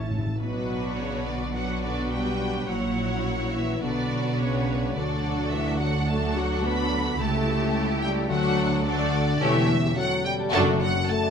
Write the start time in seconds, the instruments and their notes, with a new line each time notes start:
Already playing: double bass section A1, cello section A2, harp A2 E3 C#4 E4 E5, viola section C#4, violin section C#5 A5
0.01 timpani A2, harp C#5
0.11 timpani A2
0.18 timpani A2, harp E4
0.26 timpani A2
0.40 double bass section B1, harp B2, cello section B2, french horn section B2, viola section F#3 D4, violin section F#4 B4
0.55 harp F#3
0.69 harp B3
0.83 harp D4
0.96 french horn section C#3, violin section C#5, harp D5
1.12 harp B4
1.25 french horn section D3, violin section D5, harp D5
1.41 harp D6
1.54 viola section F#3 D4, french horn section F#3, violin section F#4 B4 F#5, harp D5
1.69 harp D4
1.83 french horn section D3, harp B3, violin section D5
1.97 harp F#3
2.11 french horn section G3, harp B3, violin section G5
2.26 harp F#3
2.40 harp B3
2.55 harp F#3
2.68 double bass section A#1, harp A#2, cello section A#2, viola section F#3 E4, french horn section F#3, violin section F#4 C#5 F#5
2.83 harp A#3
2.97 harp C#4
3.11 harp E4
3.26 harp C#5
3.40 harp E4
3.53 french horn section E3, violin section E5, harp E5
3.69 harp C#6
3.82 double bass section B1, cello section B2, harp B2, french horn section D3, viola section F#3 D4, violin section F#4 B4 D5
3.96 harp F#3
4.11 harp D4
4.25 harp F#4
4.37 french horn section C#3, harp B4, violin section C#5
4.53 harp D5
4.67 harp F#5
4.81 harp B5
4.95 cello section D2, double bass section D2, harp D3, french horn section D3, viola section F#3 D4, violin section F#4 A4 D5
5.09 harp A3
5.23 harp D4
5.38 harp F#4
5.51 french horn section E3, harp A4, violin section E5
5.65 harp D5
5.79 french horn section F#3, violin section F#5, harp F#5
5.93 harp A5
6.07 viola section F#3 D4, french horn section A3, violin section F#4 A4 A5, harp F#5
6.21 harp A4
6.36 french horn section F#3, harp F#4, violin section F#5
6.50 harp D4
6.63 harp A3, french horn section B3, violin section B5
6.77 harp D4
6.91 harp A3
7.05 harp D4
7.19 double bass section C#2, cello section C#2, harp C#3, viola section A3 E4, french horn section A3, violin section G4 A4 A5
7.33 harp C#4
7.46 harp E4
7.60 harp G4
7.74 harp A4
7.88 harp E5
8.01 french horn section G3, harp G5, violin section G5
8.16 harp A5
8.28 double bass section D2, cello section D2, harp D3, french horn section F#3, viola section A3 D4, violin section F#4 A4 F#5
8.43 harp A3
8.57 harp D4
8.71 harp F#4
8.84 french horn section D3, viola section A3 D4, violin section F#4 A4 D5, harp A4
8.99 harp D5
9.13 harp F#5
9.26 harp A5
9.40 double bass section E1, cello section E2, harp E3, french horn section E3, viola section A3 C#4, violin section G4 A4 E5
9.54 harp E4
9.69 harp C#4
9.82 harp G4
9.96 french horn section F#3, harp A4, violin section F#5
10.11 harp C#5
10.24 french horn section G3, violin section G5, harp G5
10.39 harp A5
10.52 double bass section F#1, cello section F#2, harp F#2, viola section F#3 D4, french horn section A3, violin section F#4 A4 A5
10.68 harp F#3
10.80 french horn section F#3, harp D4, violin section F#5
10.95 harp F#4
11.08 french horn section A3, harp A4, violin section A5
11.23 harp D5